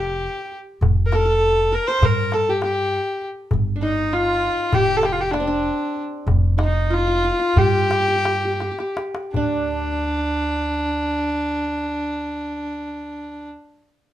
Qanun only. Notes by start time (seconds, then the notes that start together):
Already playing: G4 A#4 C5
1.13 A4
1.19 A#4
1.25 A4
1.72 A#4
1.88 C5
2.03 A#4
2.34 A4
2.49 G4
2.63 G4
3.76 D4
3.82 D#4
4.13 F4
4.73 G4
5.33 D4
5.40 C4
5.47 D4
6.58 D#4
6.90 F4
6.99 F4
7.07 F4
7.15 F4
7.24 F4
7.32 F4
7.39 F4
7.57 G4
7.65 G4
7.73 G4
7.82 G4
7.89 G4
8.00 G4
8.08 G4
8.25 G4
8.34 G4
8.45 G4
8.53 G4
8.61 G4
8.72 G4
8.80 G4
9.36 D4